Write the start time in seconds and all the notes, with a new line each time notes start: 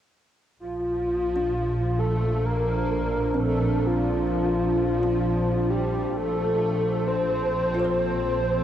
0.59 A#1 A#2 F4
1.21 F3
1.36 D4
1.67 D4
1.92 C5
1.99 A4
2.46 A#4
3.11 A5
3.34 C4
3.39 A4
3.86 F4
5.03 D4
5.70 G4
6.14 A#1 A4
7.08 C5
7.56 C4
7.74 F4
7.79 A4
7.84 C5
7.98 C5